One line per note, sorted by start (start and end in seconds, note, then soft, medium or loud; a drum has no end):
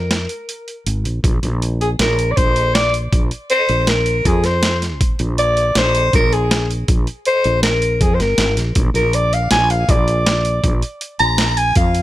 0.00 0.26 F2 medium
0.00 0.83 A#4 medium
0.11 snare medium
0.11 closed hi-hat medium
0.29 closed hi-hat soft
0.49 closed hi-hat medium
0.68 closed hi-hat soft
0.86 1.04 G#1 medium
0.86 closed hi-hat medium
1.05 1.23 A#1 medium
1.05 closed hi-hat medium
1.24 1.42 A#1 medium
1.24 kick loud
1.24 closed hi-hat medium
1.43 1.96 A#1 medium
1.43 closed hi-hat medium
1.62 closed hi-hat medium
1.81 1.90 G#4 medium
1.81 closed hi-hat medium
1.99 2.34 A#1 medium
1.99 2.33 A#4 medium
1.99 snare loud
1.99 closed hi-hat medium
2.19 closed hi-hat medium
2.32 2.38 D5 medium
2.37 3.09 A#1 medium
2.37 2.76 C5 medium
2.37 kick medium
2.37 closed hi-hat medium
2.56 closed hi-hat medium
2.75 2.94 D5 medium
2.75 snare loud
2.75 closed hi-hat medium
2.94 closed hi-hat medium
3.12 3.30 A#1 medium
3.12 kick medium
3.12 closed hi-hat medium
3.31 closed hi-hat soft
3.50 3.91 C5 medium
3.50 closed hi-hat medium
3.69 4.22 A#1 medium
3.69 closed hi-hat soft
3.87 4.28 A#4 medium
3.87 snare loud
3.87 closed hi-hat medium
4.06 closed hi-hat medium
4.25 5.01 F2 medium
4.25 4.47 G#4 medium
4.25 kick medium
4.25 closed hi-hat medium
4.44 4.83 C5 medium
4.44 snare soft
4.44 closed hi-hat medium
4.63 snare loud
4.63 closed hi-hat medium
4.82 snare soft
4.82 closed hi-hat medium
5.01 5.18 A#1 loud
5.01 kick loud
5.01 closed hi-hat medium
5.19 5.72 A#1 medium
5.19 closed hi-hat medium
5.38 5.80 D5 medium
5.38 closed hi-hat medium
5.57 closed hi-hat medium
5.75 6.11 A#1 medium
5.75 6.15 C5 medium
5.75 snare loud
5.75 closed hi-hat medium
5.95 closed hi-hat medium
6.13 6.85 A#1 medium
6.13 6.35 A#4 medium
6.13 kick loud
6.13 closed hi-hat medium
6.33 6.71 G#4 medium
6.33 closed hi-hat medium
6.51 snare loud
6.51 closed hi-hat medium
6.71 closed hi-hat medium
6.88 7.06 A#1 medium
6.88 kick loud
6.88 closed hi-hat medium
7.07 closed hi-hat soft
7.25 7.62 C5 loud
7.25 closed hi-hat medium
7.44 7.98 A#1 medium
7.44 closed hi-hat soft
7.63 8.03 A#4 medium
7.63 snare loud
7.63 closed hi-hat medium
7.82 closed hi-hat medium
8.01 8.19 F2 medium
8.01 8.16 G#4 medium
8.01 kick loud
8.01 closed hi-hat medium
8.15 8.23 C5 medium
8.20 8.37 G1 medium
8.20 8.58 A#4 medium
8.20 snare soft
8.20 closed hi-hat medium
8.38 8.55 G#1 medium
8.38 snare loud
8.38 closed hi-hat medium
8.57 8.76 A#1 medium
8.57 snare soft
8.57 closed hi-hat medium
8.75 8.94 A#1 medium
8.75 kick loud
8.75 closed hi-hat medium
8.94 9.47 A#1 medium
8.94 9.16 A#4 medium
8.94 closed hi-hat medium
9.13 9.35 D5 medium
9.13 closed hi-hat medium
9.33 9.51 F5 medium
9.33 closed hi-hat medium
9.51 9.86 A#1 loud
9.51 9.72 G#5 medium
9.51 snare loud
9.51 closed hi-hat medium
9.70 9.92 F5 medium
9.70 closed hi-hat medium
9.89 10.60 A#1 medium
9.89 10.83 D5 medium
9.89 kick medium
9.89 closed hi-hat medium
10.08 closed hi-hat medium
10.26 snare loud
10.26 closed hi-hat medium
10.45 closed hi-hat medium
10.64 10.81 A#1 medium
10.64 kick medium
10.64 closed hi-hat medium
10.82 closed hi-hat medium
11.01 closed hi-hat medium
11.19 11.72 A#1 medium
11.19 11.59 A#5 medium
11.19 closed hi-hat medium
11.38 snare loud
11.38 closed hi-hat medium
11.57 11.76 G#5 medium
11.57 closed hi-hat medium
11.75 12.02 F2 medium
11.75 12.02 F5 medium
11.75 kick medium
11.75 closed hi-hat medium
11.95 closed hi-hat medium